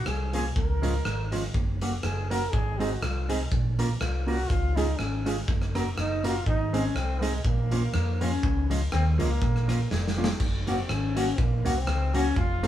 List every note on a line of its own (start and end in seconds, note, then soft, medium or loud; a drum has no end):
0.06 0.49 C2 loud
0.06 0.34 G#4 medium
0.06 cross-stick loud
0.33 0.43 F3 medium
0.33 0.44 A#3 medium
0.33 0.44 C#4 medium
0.33 0.44 F4 medium
0.33 0.44 G#4 loud
0.33 closed hi-hat medium
0.56 0.98 C#2 loud
0.56 1.29 A#4 medium
0.56 kick loud
0.82 0.92 F3 medium
0.82 0.93 G#3 loud
0.82 0.93 C#4 loud
0.82 0.93 F4 medium
0.82 closed hi-hat medium
1.05 1.47 G#1 medium
1.05 cross-stick loud
1.32 1.42 F3 medium
1.32 1.42 G#3 medium
1.32 1.42 C#4 medium
1.32 1.42 F4 medium
1.32 closed hi-hat medium
1.54 1.96 F#1 loud
1.54 kick loud
1.81 1.91 F#3 medium
1.81 1.91 A#3 medium
1.81 1.92 C#4 medium
1.81 1.92 F#4 medium
1.81 closed hi-hat medium
2.03 2.46 F#1 medium
2.03 2.29 G#4 medium
2.03 cross-stick loud
2.30 2.40 F#3 medium
2.30 2.40 A#3 medium
2.30 2.40 C#4 medium
2.30 2.41 F#4 medium
2.30 2.53 A#4 loud
2.30 closed hi-hat medium
2.52 2.95 G#1 loud
2.52 2.80 G#4 medium
2.52 kick loud
2.78 2.89 G#3 medium
2.78 2.89 C4 medium
2.78 2.90 D#4 medium
2.78 3.02 F#4 medium
2.78 2.90 G#4 loud
2.78 closed hi-hat medium
3.01 3.44 C2 medium
3.01 3.28 F4 medium
3.01 cross-stick loud
3.29 3.39 G#3 medium
3.29 3.39 C4 medium
3.29 3.39 D#4 medium
3.29 3.39 G#4 medium
3.29 closed hi-hat medium
3.52 3.93 A#1 medium
3.52 kick loud
3.79 3.88 A#3 medium
3.79 3.88 C#4 medium
3.79 3.88 F4 medium
3.79 3.89 A#4 medium
3.79 closed hi-hat medium
4.01 4.42 C2 medium
4.01 4.29 F4 medium
4.01 cross-stick loud
4.27 4.37 A#3 medium
4.27 4.37 C#4 medium
4.27 4.37 F4 medium
4.27 4.50 F#4 loud
4.27 4.37 A#4 medium
4.27 open hi-hat medium
4.49 4.92 C#2 medium
4.49 4.77 F4 loud
4.49 kick loud
4.49 hi-hat pedal medium
4.76 4.86 G#3 medium
4.76 4.86 C#4 medium
4.76 5.00 D#4 medium
4.76 4.87 F4 loud
4.76 4.87 G#4 loud
4.76 closed hi-hat medium
4.98 5.41 G#1 medium
4.98 5.26 C#4 medium
4.98 cross-stick medium
5.26 5.35 G#3 medium
5.26 5.36 C#4 medium
5.26 5.36 F4 medium
5.26 5.36 G#4 medium
5.26 closed hi-hat medium
5.48 5.90 F#1 loud
5.48 kick loud
5.62 cross-stick medium
5.75 5.84 A#3 medium
5.75 5.85 C#4 medium
5.75 5.85 F#4 medium
5.75 5.85 A#4 medium
5.75 cross-stick medium
5.75 closed hi-hat medium
5.98 6.39 F#1 medium
5.98 6.27 D#4 loud
5.98 cross-stick loud
6.24 6.34 A#3 medium
6.24 6.34 C#4 medium
6.24 6.47 F4 loud
6.24 6.34 F#4 medium
6.24 6.34 A#4 medium
6.24 closed hi-hat medium
6.46 6.88 G#1 loud
6.46 6.75 D#4 medium
6.46 kick medium
6.73 6.83 G#3 medium
6.73 6.83 C4 loud
6.73 6.97 C#4 medium
6.73 6.83 D#4 medium
6.73 6.83 G#4 loud
6.73 closed hi-hat medium
6.95 7.37 C2 medium
6.95 7.25 C4 medium
6.95 cross-stick loud
7.21 7.32 G#3 medium
7.21 7.44 G#3 medium
7.21 7.32 C4 medium
7.21 7.32 D#4 medium
7.21 7.32 G#4 loud
7.21 closed hi-hat medium
7.45 7.87 A#1 loud
7.45 8.23 A#3 medium
7.45 kick loud
7.71 7.81 F3 medium
7.71 7.81 A#3 medium
7.71 7.82 C#4 medium
7.71 7.82 F4 medium
7.71 closed hi-hat medium
7.94 8.36 F2 medium
7.94 cross-stick loud
8.21 8.31 F3 medium
8.21 8.31 A#3 medium
8.21 8.70 C#4 medium
8.21 8.31 C#4 loud
8.21 8.31 F4 medium
8.21 closed hi-hat medium
8.43 8.85 C#2 loud
8.43 kick loud
8.70 8.80 F3 medium
8.70 8.80 G#3 medium
8.70 8.80 C#4 medium
8.70 8.80 F4 medium
8.70 closed hi-hat medium
8.92 9.16 D#2 medium
8.92 9.04 C4 medium
8.92 cross-stick loud
9.18 9.39 C#2 medium
9.18 9.28 F3 medium
9.18 9.29 G#3 medium
9.18 10.14 A#3 medium
9.18 9.29 C#4 medium
9.18 9.29 F4 medium
9.18 closed hi-hat medium
9.42 9.83 A#1 medium
9.42 kick loud
9.56 cross-stick medium
9.68 9.78 F3 medium
9.68 9.78 A#3 medium
9.68 9.78 C#4 medium
9.68 9.79 F4 medium
9.68 cross-stick medium
9.68 closed hi-hat medium
9.91 10.33 F1 medium
9.91 snare medium
10.07 snare medium
10.17 10.27 F3 medium
10.17 10.27 A#3 medium
10.17 10.28 C#4 medium
10.17 10.28 F4 medium
10.24 snare loud
10.40 10.82 F#1 loud
10.40 kick loud
10.40 crash medium
10.67 10.77 F#3 medium
10.67 10.77 A#3 medium
10.67 10.92 C4 medium
10.67 10.77 C#4 medium
10.67 10.77 F#4 loud
10.67 closed hi-hat medium
10.89 11.31 G#1 medium
10.89 11.41 C#4 medium
10.89 cross-stick loud
11.16 11.26 F#3 medium
11.16 11.26 A#3 medium
11.16 11.26 C#4 medium
11.16 11.26 F#4 medium
11.16 closed hi-hat medium
11.38 11.61 A#1 loud
11.38 11.80 A#3 medium
11.38 kick loud
11.65 11.84 C2 loud
11.65 11.75 F#3 medium
11.65 11.75 A#3 medium
11.65 11.75 C#4 medium
11.65 11.75 F#4 loud
11.65 closed hi-hat medium
11.78 12.16 C4 medium
11.87 12.30 C#2 medium
11.87 cross-stick loud
12.13 12.24 F#3 medium
12.13 12.24 A#3 medium
12.13 12.24 C#4 medium
12.13 12.37 C#4 loud
12.13 12.25 F#4 loud
12.13 closed hi-hat medium
12.36 12.67 F1 loud
12.36 12.67 F4 loud
12.36 kick medium
12.63 12.67 A3 loud
12.63 12.67 C4 loud
12.63 12.67 F4 medium
12.63 12.67 A4 loud
12.63 closed hi-hat medium